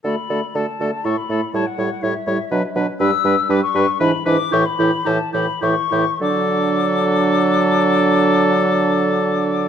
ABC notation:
X:1
M:3/4
L:1/16
Q:1/4=115
K:D
V:1 name="Flute"
b4 a4 c' b3 | a f3 e6 z2 | e'4 d' c'3 b2 d'2 | c' b3 a2 b2 c'4 |
d'12- | d'12 |]
V:2 name="Oboe"
A2 A2 A2 A2 A2 A2 | c2 c2 c2 c2 B2 B2 | B2 B2 B2 B2 B2 B2 | G2 G2 G2 G2 G2 G2 |
A12- | A12 |]
V:3 name="Clarinet"
F2 F2 F2 F2 E2 E2 | E2 E2 E2 E2 D2 D2 | D2 D2 D2 D2 D2 D2 | E2 E2 E2 E2 E2 E2 |
D12- | D12 |]
V:4 name="French horn" clef=bass
A,2 A,2 A,2 A,2 A,2 A,2 | G,2 G,2 G,2 G,2 F,2 F,2 | G,2 G,2 G,2 G,2 E,2 E,2 | E,2 E,2 E,2 E,2 E,2 E,2 |
F,12- | F,12 |]
V:5 name="Bassoon" clef=bass
D,2 D,2 D,2 D,2 A,,2 A,,2 | A,,2 A,,2 A,,2 A,,2 B,,2 B,,2 | G,,2 G,,2 G,,2 G,,2 ^G,,2 G,,2 | A,,2 A,,2 A,,2 A,,2 A,,2 A,,2 |
D,12- | D,12 |]